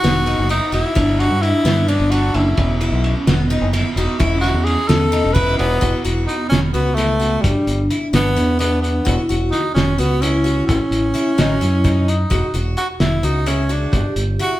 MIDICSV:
0, 0, Header, 1, 6, 480
1, 0, Start_track
1, 0, Tempo, 462963
1, 998, Time_signature, 7, 3, 24, 8
1, 15136, End_track
2, 0, Start_track
2, 0, Title_t, "Twelve-string acoustic guitar"
2, 0, Program_c, 0, 25
2, 39, Note_on_c, 0, 59, 86
2, 200, Note_off_c, 0, 59, 0
2, 272, Note_on_c, 0, 63, 72
2, 436, Note_off_c, 0, 63, 0
2, 512, Note_on_c, 0, 64, 70
2, 675, Note_off_c, 0, 64, 0
2, 749, Note_on_c, 0, 66, 76
2, 913, Note_off_c, 0, 66, 0
2, 987, Note_on_c, 0, 62, 83
2, 1313, Note_off_c, 0, 62, 0
2, 1710, Note_on_c, 0, 59, 87
2, 1874, Note_off_c, 0, 59, 0
2, 1954, Note_on_c, 0, 61, 79
2, 2116, Note_off_c, 0, 61, 0
2, 2195, Note_on_c, 0, 62, 77
2, 2517, Note_off_c, 0, 62, 0
2, 2917, Note_on_c, 0, 64, 77
2, 3238, Note_off_c, 0, 64, 0
2, 3395, Note_on_c, 0, 59, 86
2, 3556, Note_off_c, 0, 59, 0
2, 3632, Note_on_c, 0, 63, 82
2, 3794, Note_off_c, 0, 63, 0
2, 3870, Note_on_c, 0, 64, 79
2, 4033, Note_off_c, 0, 64, 0
2, 4120, Note_on_c, 0, 66, 78
2, 4279, Note_off_c, 0, 66, 0
2, 4350, Note_on_c, 0, 64, 83
2, 4673, Note_off_c, 0, 64, 0
2, 5069, Note_on_c, 0, 61, 85
2, 5232, Note_off_c, 0, 61, 0
2, 5308, Note_on_c, 0, 63, 85
2, 5471, Note_off_c, 0, 63, 0
2, 5543, Note_on_c, 0, 64, 82
2, 5869, Note_off_c, 0, 64, 0
2, 6024, Note_on_c, 0, 66, 86
2, 6188, Note_off_c, 0, 66, 0
2, 6269, Note_on_c, 0, 66, 79
2, 6592, Note_off_c, 0, 66, 0
2, 6987, Note_on_c, 0, 66, 71
2, 7150, Note_off_c, 0, 66, 0
2, 7226, Note_on_c, 0, 64, 69
2, 7390, Note_off_c, 0, 64, 0
2, 7461, Note_on_c, 0, 66, 70
2, 7788, Note_off_c, 0, 66, 0
2, 8197, Note_on_c, 0, 64, 68
2, 8358, Note_off_c, 0, 64, 0
2, 8431, Note_on_c, 0, 62, 82
2, 8593, Note_off_c, 0, 62, 0
2, 8672, Note_on_c, 0, 61, 69
2, 8834, Note_off_c, 0, 61, 0
2, 8905, Note_on_c, 0, 62, 70
2, 9231, Note_off_c, 0, 62, 0
2, 9383, Note_on_c, 0, 66, 85
2, 9549, Note_off_c, 0, 66, 0
2, 9633, Note_on_c, 0, 66, 81
2, 9957, Note_off_c, 0, 66, 0
2, 10352, Note_on_c, 0, 66, 76
2, 10515, Note_off_c, 0, 66, 0
2, 10595, Note_on_c, 0, 64, 73
2, 10757, Note_off_c, 0, 64, 0
2, 10826, Note_on_c, 0, 66, 73
2, 11152, Note_off_c, 0, 66, 0
2, 11548, Note_on_c, 0, 64, 70
2, 11713, Note_off_c, 0, 64, 0
2, 11798, Note_on_c, 0, 63, 80
2, 11959, Note_off_c, 0, 63, 0
2, 12038, Note_on_c, 0, 61, 72
2, 12200, Note_off_c, 0, 61, 0
2, 12277, Note_on_c, 0, 63, 65
2, 12600, Note_off_c, 0, 63, 0
2, 12753, Note_on_c, 0, 66, 80
2, 12916, Note_off_c, 0, 66, 0
2, 13010, Note_on_c, 0, 66, 70
2, 13329, Note_off_c, 0, 66, 0
2, 13719, Note_on_c, 0, 66, 71
2, 13881, Note_off_c, 0, 66, 0
2, 13958, Note_on_c, 0, 64, 76
2, 14120, Note_off_c, 0, 64, 0
2, 14196, Note_on_c, 0, 66, 68
2, 14520, Note_off_c, 0, 66, 0
2, 14925, Note_on_c, 0, 64, 73
2, 15085, Note_off_c, 0, 64, 0
2, 15136, End_track
3, 0, Start_track
3, 0, Title_t, "Vibraphone"
3, 0, Program_c, 1, 11
3, 0, Note_on_c, 1, 63, 92
3, 948, Note_off_c, 1, 63, 0
3, 993, Note_on_c, 1, 62, 95
3, 2332, Note_off_c, 1, 62, 0
3, 2372, Note_on_c, 1, 62, 62
3, 2429, Note_on_c, 1, 61, 86
3, 2434, Note_off_c, 1, 62, 0
3, 2679, Note_on_c, 1, 59, 77
3, 2680, Note_off_c, 1, 61, 0
3, 3152, Note_on_c, 1, 61, 92
3, 3171, Note_off_c, 1, 59, 0
3, 3389, Note_on_c, 1, 59, 78
3, 3401, Note_off_c, 1, 61, 0
3, 4310, Note_off_c, 1, 59, 0
3, 4344, Note_on_c, 1, 61, 80
3, 5747, Note_off_c, 1, 61, 0
3, 6036, Note_on_c, 1, 64, 78
3, 6481, Note_off_c, 1, 64, 0
3, 6517, Note_on_c, 1, 59, 74
3, 7674, Note_off_c, 1, 59, 0
3, 7707, Note_on_c, 1, 62, 79
3, 9394, Note_on_c, 1, 64, 83
3, 9443, Note_off_c, 1, 62, 0
3, 9875, Note_on_c, 1, 66, 101
3, 9890, Note_off_c, 1, 64, 0
3, 10555, Note_off_c, 1, 66, 0
3, 10602, Note_on_c, 1, 64, 97
3, 11072, Note_off_c, 1, 64, 0
3, 11085, Note_on_c, 1, 64, 85
3, 11760, Note_off_c, 1, 64, 0
3, 11800, Note_on_c, 1, 66, 91
3, 12023, Note_off_c, 1, 66, 0
3, 12046, Note_on_c, 1, 64, 79
3, 12490, Note_off_c, 1, 64, 0
3, 12761, Note_on_c, 1, 66, 90
3, 13920, Note_off_c, 1, 66, 0
3, 13967, Note_on_c, 1, 68, 101
3, 14411, Note_off_c, 1, 68, 0
3, 14432, Note_on_c, 1, 67, 86
3, 15136, Note_off_c, 1, 67, 0
3, 15136, End_track
4, 0, Start_track
4, 0, Title_t, "Tenor saxophone"
4, 0, Program_c, 2, 66
4, 0, Note_on_c, 2, 66, 119
4, 487, Note_off_c, 2, 66, 0
4, 528, Note_on_c, 2, 63, 99
4, 747, Note_off_c, 2, 63, 0
4, 775, Note_on_c, 2, 64, 97
4, 1240, Note_on_c, 2, 66, 106
4, 1256, Note_off_c, 2, 64, 0
4, 1469, Note_on_c, 2, 64, 105
4, 1484, Note_off_c, 2, 66, 0
4, 1950, Note_on_c, 2, 62, 91
4, 1966, Note_off_c, 2, 64, 0
4, 2184, Note_on_c, 2, 66, 103
4, 2199, Note_off_c, 2, 62, 0
4, 2437, Note_on_c, 2, 64, 85
4, 2452, Note_off_c, 2, 66, 0
4, 2916, Note_off_c, 2, 64, 0
4, 4115, Note_on_c, 2, 63, 78
4, 4342, Note_on_c, 2, 64, 85
4, 4357, Note_off_c, 2, 63, 0
4, 4564, Note_off_c, 2, 64, 0
4, 4570, Note_on_c, 2, 66, 99
4, 4812, Note_on_c, 2, 68, 101
4, 4828, Note_off_c, 2, 66, 0
4, 5058, Note_on_c, 2, 69, 100
4, 5074, Note_off_c, 2, 68, 0
4, 5527, Note_on_c, 2, 71, 100
4, 5543, Note_off_c, 2, 69, 0
4, 5780, Note_off_c, 2, 71, 0
4, 5785, Note_on_c, 2, 59, 102
4, 6235, Note_off_c, 2, 59, 0
4, 6496, Note_on_c, 2, 63, 92
4, 6724, Note_off_c, 2, 63, 0
4, 6730, Note_on_c, 2, 61, 93
4, 6843, Note_off_c, 2, 61, 0
4, 6980, Note_on_c, 2, 59, 96
4, 7200, Note_on_c, 2, 57, 96
4, 7215, Note_off_c, 2, 59, 0
4, 7686, Note_on_c, 2, 55, 79
4, 7701, Note_off_c, 2, 57, 0
4, 8180, Note_off_c, 2, 55, 0
4, 8446, Note_on_c, 2, 59, 101
4, 8888, Note_off_c, 2, 59, 0
4, 8914, Note_on_c, 2, 59, 102
4, 9138, Note_off_c, 2, 59, 0
4, 9145, Note_on_c, 2, 59, 83
4, 9597, Note_off_c, 2, 59, 0
4, 9860, Note_on_c, 2, 63, 96
4, 10091, Note_off_c, 2, 63, 0
4, 10101, Note_on_c, 2, 61, 93
4, 10354, Note_on_c, 2, 59, 91
4, 10369, Note_off_c, 2, 61, 0
4, 10587, Note_on_c, 2, 61, 95
4, 10603, Note_off_c, 2, 59, 0
4, 11057, Note_off_c, 2, 61, 0
4, 11063, Note_on_c, 2, 61, 92
4, 12534, Note_on_c, 2, 63, 75
4, 12550, Note_off_c, 2, 61, 0
4, 13007, Note_off_c, 2, 63, 0
4, 13242, Note_on_c, 2, 66, 98
4, 13350, Note_off_c, 2, 66, 0
4, 13481, Note_on_c, 2, 64, 94
4, 13728, Note_on_c, 2, 63, 92
4, 13744, Note_off_c, 2, 64, 0
4, 13970, Note_on_c, 2, 61, 87
4, 13986, Note_off_c, 2, 63, 0
4, 14225, Note_on_c, 2, 62, 77
4, 14240, Note_off_c, 2, 61, 0
4, 14694, Note_off_c, 2, 62, 0
4, 14943, Note_on_c, 2, 66, 101
4, 15136, Note_off_c, 2, 66, 0
4, 15136, End_track
5, 0, Start_track
5, 0, Title_t, "Fingered electric bass"
5, 0, Program_c, 3, 33
5, 36, Note_on_c, 3, 28, 85
5, 360, Note_off_c, 3, 28, 0
5, 399, Note_on_c, 3, 30, 92
5, 614, Note_off_c, 3, 30, 0
5, 751, Note_on_c, 3, 28, 93
5, 862, Note_off_c, 3, 28, 0
5, 999, Note_on_c, 3, 31, 96
5, 1321, Note_off_c, 3, 31, 0
5, 1354, Note_on_c, 3, 43, 108
5, 1571, Note_off_c, 3, 43, 0
5, 1707, Note_on_c, 3, 43, 88
5, 2034, Note_off_c, 3, 43, 0
5, 2069, Note_on_c, 3, 31, 102
5, 2395, Note_off_c, 3, 31, 0
5, 2428, Note_on_c, 3, 30, 114
5, 2647, Note_off_c, 3, 30, 0
5, 2673, Note_on_c, 3, 28, 95
5, 2997, Note_off_c, 3, 28, 0
5, 3031, Note_on_c, 3, 35, 103
5, 3248, Note_off_c, 3, 35, 0
5, 3388, Note_on_c, 3, 28, 90
5, 3714, Note_off_c, 3, 28, 0
5, 3745, Note_on_c, 3, 30, 94
5, 3965, Note_off_c, 3, 30, 0
5, 4105, Note_on_c, 3, 28, 108
5, 4217, Note_off_c, 3, 28, 0
5, 4357, Note_on_c, 3, 28, 101
5, 4678, Note_off_c, 3, 28, 0
5, 4710, Note_on_c, 3, 40, 110
5, 4927, Note_off_c, 3, 40, 0
5, 5073, Note_on_c, 3, 40, 98
5, 5396, Note_off_c, 3, 40, 0
5, 5434, Note_on_c, 3, 28, 107
5, 5757, Note_off_c, 3, 28, 0
5, 5799, Note_on_c, 3, 28, 115
5, 6012, Note_off_c, 3, 28, 0
5, 6034, Note_on_c, 3, 28, 94
5, 6141, Note_off_c, 3, 28, 0
5, 6274, Note_on_c, 3, 28, 88
5, 6489, Note_off_c, 3, 28, 0
5, 6751, Note_on_c, 3, 28, 89
5, 6967, Note_off_c, 3, 28, 0
5, 6991, Note_on_c, 3, 37, 88
5, 7638, Note_off_c, 3, 37, 0
5, 7711, Note_on_c, 3, 31, 98
5, 7820, Note_off_c, 3, 31, 0
5, 7953, Note_on_c, 3, 31, 96
5, 8169, Note_off_c, 3, 31, 0
5, 8430, Note_on_c, 3, 31, 92
5, 8648, Note_off_c, 3, 31, 0
5, 8676, Note_on_c, 3, 40, 93
5, 9322, Note_off_c, 3, 40, 0
5, 9400, Note_on_c, 3, 28, 105
5, 9506, Note_off_c, 3, 28, 0
5, 9643, Note_on_c, 3, 28, 95
5, 9855, Note_off_c, 3, 28, 0
5, 10117, Note_on_c, 3, 28, 91
5, 10332, Note_off_c, 3, 28, 0
5, 10356, Note_on_c, 3, 37, 92
5, 11003, Note_off_c, 3, 37, 0
5, 11082, Note_on_c, 3, 33, 107
5, 11188, Note_off_c, 3, 33, 0
5, 11312, Note_on_c, 3, 33, 85
5, 11530, Note_off_c, 3, 33, 0
5, 11808, Note_on_c, 3, 33, 93
5, 12019, Note_off_c, 3, 33, 0
5, 12045, Note_on_c, 3, 42, 80
5, 12689, Note_off_c, 3, 42, 0
5, 12762, Note_on_c, 3, 28, 100
5, 12869, Note_off_c, 3, 28, 0
5, 13001, Note_on_c, 3, 28, 89
5, 13216, Note_off_c, 3, 28, 0
5, 13477, Note_on_c, 3, 28, 93
5, 13694, Note_off_c, 3, 28, 0
5, 13718, Note_on_c, 3, 37, 91
5, 14366, Note_off_c, 3, 37, 0
5, 14444, Note_on_c, 3, 31, 108
5, 14551, Note_off_c, 3, 31, 0
5, 14681, Note_on_c, 3, 31, 91
5, 14897, Note_off_c, 3, 31, 0
5, 15136, End_track
6, 0, Start_track
6, 0, Title_t, "Drums"
6, 46, Note_on_c, 9, 38, 114
6, 46, Note_on_c, 9, 51, 84
6, 150, Note_off_c, 9, 38, 0
6, 150, Note_off_c, 9, 51, 0
6, 281, Note_on_c, 9, 51, 65
6, 385, Note_off_c, 9, 51, 0
6, 521, Note_on_c, 9, 51, 89
6, 624, Note_off_c, 9, 51, 0
6, 761, Note_on_c, 9, 51, 63
6, 864, Note_off_c, 9, 51, 0
6, 999, Note_on_c, 9, 36, 118
6, 1001, Note_on_c, 9, 51, 88
6, 1102, Note_off_c, 9, 36, 0
6, 1105, Note_off_c, 9, 51, 0
6, 1245, Note_on_c, 9, 51, 66
6, 1348, Note_off_c, 9, 51, 0
6, 1481, Note_on_c, 9, 51, 61
6, 1584, Note_off_c, 9, 51, 0
6, 1720, Note_on_c, 9, 38, 123
6, 1720, Note_on_c, 9, 51, 87
6, 1824, Note_off_c, 9, 38, 0
6, 1824, Note_off_c, 9, 51, 0
6, 1958, Note_on_c, 9, 51, 64
6, 2061, Note_off_c, 9, 51, 0
6, 2194, Note_on_c, 9, 51, 75
6, 2297, Note_off_c, 9, 51, 0
6, 2428, Note_on_c, 9, 51, 56
6, 2532, Note_off_c, 9, 51, 0
6, 2668, Note_on_c, 9, 51, 92
6, 2672, Note_on_c, 9, 36, 118
6, 2772, Note_off_c, 9, 51, 0
6, 2776, Note_off_c, 9, 36, 0
6, 2908, Note_on_c, 9, 51, 59
6, 3012, Note_off_c, 9, 51, 0
6, 3152, Note_on_c, 9, 51, 55
6, 3255, Note_off_c, 9, 51, 0
6, 3394, Note_on_c, 9, 38, 122
6, 3394, Note_on_c, 9, 51, 87
6, 3498, Note_off_c, 9, 38, 0
6, 3498, Note_off_c, 9, 51, 0
6, 3634, Note_on_c, 9, 51, 62
6, 3738, Note_off_c, 9, 51, 0
6, 3873, Note_on_c, 9, 38, 36
6, 3873, Note_on_c, 9, 51, 82
6, 3977, Note_off_c, 9, 38, 0
6, 3977, Note_off_c, 9, 51, 0
6, 4118, Note_on_c, 9, 51, 61
6, 4222, Note_off_c, 9, 51, 0
6, 4356, Note_on_c, 9, 51, 95
6, 4357, Note_on_c, 9, 36, 127
6, 4460, Note_off_c, 9, 36, 0
6, 4460, Note_off_c, 9, 51, 0
6, 4599, Note_on_c, 9, 38, 36
6, 4599, Note_on_c, 9, 51, 66
6, 4703, Note_off_c, 9, 38, 0
6, 4703, Note_off_c, 9, 51, 0
6, 4838, Note_on_c, 9, 51, 65
6, 4941, Note_off_c, 9, 51, 0
6, 5074, Note_on_c, 9, 38, 123
6, 5074, Note_on_c, 9, 51, 90
6, 5177, Note_off_c, 9, 38, 0
6, 5177, Note_off_c, 9, 51, 0
6, 5317, Note_on_c, 9, 51, 69
6, 5421, Note_off_c, 9, 51, 0
6, 5556, Note_on_c, 9, 36, 114
6, 5556, Note_on_c, 9, 51, 91
6, 5659, Note_off_c, 9, 36, 0
6, 5660, Note_off_c, 9, 51, 0
6, 5796, Note_on_c, 9, 51, 62
6, 5900, Note_off_c, 9, 51, 0
6, 6034, Note_on_c, 9, 42, 77
6, 6035, Note_on_c, 9, 36, 105
6, 6137, Note_off_c, 9, 42, 0
6, 6139, Note_off_c, 9, 36, 0
6, 6276, Note_on_c, 9, 42, 57
6, 6380, Note_off_c, 9, 42, 0
6, 6519, Note_on_c, 9, 42, 57
6, 6623, Note_off_c, 9, 42, 0
6, 6758, Note_on_c, 9, 38, 104
6, 6758, Note_on_c, 9, 42, 77
6, 6862, Note_off_c, 9, 38, 0
6, 6862, Note_off_c, 9, 42, 0
6, 6997, Note_on_c, 9, 42, 52
6, 7100, Note_off_c, 9, 42, 0
6, 7238, Note_on_c, 9, 38, 30
6, 7238, Note_on_c, 9, 42, 76
6, 7342, Note_off_c, 9, 38, 0
6, 7342, Note_off_c, 9, 42, 0
6, 7479, Note_on_c, 9, 42, 55
6, 7583, Note_off_c, 9, 42, 0
6, 7714, Note_on_c, 9, 42, 89
6, 7715, Note_on_c, 9, 36, 113
6, 7818, Note_off_c, 9, 36, 0
6, 7818, Note_off_c, 9, 42, 0
6, 7956, Note_on_c, 9, 42, 59
6, 8060, Note_off_c, 9, 42, 0
6, 8195, Note_on_c, 9, 42, 60
6, 8299, Note_off_c, 9, 42, 0
6, 8437, Note_on_c, 9, 38, 104
6, 8437, Note_on_c, 9, 42, 90
6, 8541, Note_off_c, 9, 38, 0
6, 8541, Note_off_c, 9, 42, 0
6, 8681, Note_on_c, 9, 42, 59
6, 8785, Note_off_c, 9, 42, 0
6, 8922, Note_on_c, 9, 42, 86
6, 9026, Note_off_c, 9, 42, 0
6, 9166, Note_on_c, 9, 42, 50
6, 9269, Note_off_c, 9, 42, 0
6, 9400, Note_on_c, 9, 36, 119
6, 9401, Note_on_c, 9, 42, 85
6, 9504, Note_off_c, 9, 36, 0
6, 9504, Note_off_c, 9, 42, 0
6, 9646, Note_on_c, 9, 42, 61
6, 9750, Note_off_c, 9, 42, 0
6, 9879, Note_on_c, 9, 38, 31
6, 9879, Note_on_c, 9, 42, 59
6, 9983, Note_off_c, 9, 38, 0
6, 9983, Note_off_c, 9, 42, 0
6, 10124, Note_on_c, 9, 38, 100
6, 10124, Note_on_c, 9, 42, 81
6, 10228, Note_off_c, 9, 38, 0
6, 10228, Note_off_c, 9, 42, 0
6, 10369, Note_on_c, 9, 42, 57
6, 10472, Note_off_c, 9, 42, 0
6, 10607, Note_on_c, 9, 42, 78
6, 10711, Note_off_c, 9, 42, 0
6, 10842, Note_on_c, 9, 42, 51
6, 10946, Note_off_c, 9, 42, 0
6, 11082, Note_on_c, 9, 36, 114
6, 11082, Note_on_c, 9, 42, 77
6, 11185, Note_off_c, 9, 42, 0
6, 11186, Note_off_c, 9, 36, 0
6, 11323, Note_on_c, 9, 42, 58
6, 11427, Note_off_c, 9, 42, 0
6, 11558, Note_on_c, 9, 42, 59
6, 11662, Note_off_c, 9, 42, 0
6, 11804, Note_on_c, 9, 38, 102
6, 11804, Note_on_c, 9, 42, 79
6, 11908, Note_off_c, 9, 38, 0
6, 11908, Note_off_c, 9, 42, 0
6, 12049, Note_on_c, 9, 42, 60
6, 12152, Note_off_c, 9, 42, 0
6, 12284, Note_on_c, 9, 36, 102
6, 12284, Note_on_c, 9, 42, 76
6, 12387, Note_off_c, 9, 36, 0
6, 12387, Note_off_c, 9, 42, 0
6, 12527, Note_on_c, 9, 42, 58
6, 12630, Note_off_c, 9, 42, 0
6, 12764, Note_on_c, 9, 36, 110
6, 12765, Note_on_c, 9, 42, 87
6, 12867, Note_off_c, 9, 36, 0
6, 12869, Note_off_c, 9, 42, 0
6, 13000, Note_on_c, 9, 42, 58
6, 13103, Note_off_c, 9, 42, 0
6, 13239, Note_on_c, 9, 42, 60
6, 13343, Note_off_c, 9, 42, 0
6, 13481, Note_on_c, 9, 38, 109
6, 13481, Note_on_c, 9, 42, 83
6, 13584, Note_off_c, 9, 38, 0
6, 13584, Note_off_c, 9, 42, 0
6, 13720, Note_on_c, 9, 42, 61
6, 13824, Note_off_c, 9, 42, 0
6, 13961, Note_on_c, 9, 42, 80
6, 14065, Note_off_c, 9, 42, 0
6, 14200, Note_on_c, 9, 42, 48
6, 14304, Note_off_c, 9, 42, 0
6, 14442, Note_on_c, 9, 36, 102
6, 14443, Note_on_c, 9, 42, 81
6, 14545, Note_off_c, 9, 36, 0
6, 14546, Note_off_c, 9, 42, 0
6, 14683, Note_on_c, 9, 42, 58
6, 14786, Note_off_c, 9, 42, 0
6, 14924, Note_on_c, 9, 42, 53
6, 15028, Note_off_c, 9, 42, 0
6, 15136, End_track
0, 0, End_of_file